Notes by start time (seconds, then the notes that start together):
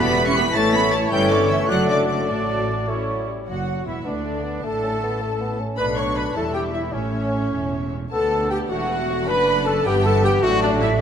Already playing: B4 B5 B6
0.00 E1 E3 G3 B3 E4 G4 B5
0.17 B3 E4
0.25 C#4 C#6 C#7
0.34 G3 B3 G4 B5 B6
0.53 A1 E3 A3 E4 A4 C#5 A5 A6
0.73 B3 C#4 C#5 B5 B6
0.92 A3 E4 A4 A5 A6
1.11 G1 E3 G3 C#4 A4 C#5 G5 G6
1.30 D3 D5 D6
1.49 E3 E5 E6
1.68 F#1 F#3 D4 F#4 A4 D5 F#5 F#6
1.89 D3 D5 D6
2.08 D3 D5 D6
2.28 A1 A2 F#3 D4 F#4 A4 D5 A5
2.87 A3 C#4 E4 A4 C#5
3.08 F#3
3.28 G3
3.47 F#1 F#2 F#3 F#4 F#5
3.85 E1 E2 E3 E4 E5
4.04 D2 D3 B3 D4 D5
4.24 A3
4.44 B3
4.64 A1 A2 A3 A4 A5
4.83 C#4
5.03 B3
5.21 A3
5.41 B3
5.60 C#4
5.77 B1 B2 A3 D4 B4 D5 B5
5.96 C#5 C#6
6.15 B4 B5
6.34 E1 E2 G3 E4 A4 E5 A5
6.53 G4 G5
6.72 E4 E5
6.91 A2 A3 C#4 E4 C#5 E5
6.95 A1
7.52 E1 E2
8.11 D2 A3 B3 D4 A4 D5 A5
8.49 G4 G5
8.69 E1 E2 A3 F#4 C#5 F#5
8.90 B4
9.10 C#5
9.26 F#1 F#2 D4 B4 D5 B5
9.66 A4 A5
9.84 G1 G2 E3 B3 G4 E5 G5
10.01 A4 A5
10.06 A4 A5
10.23 G4 G5
10.42 A1 A2 F#3 A3 D4 F#4 D5 F#5
10.61 D4 D5
10.80 E4 E5
10.98 E4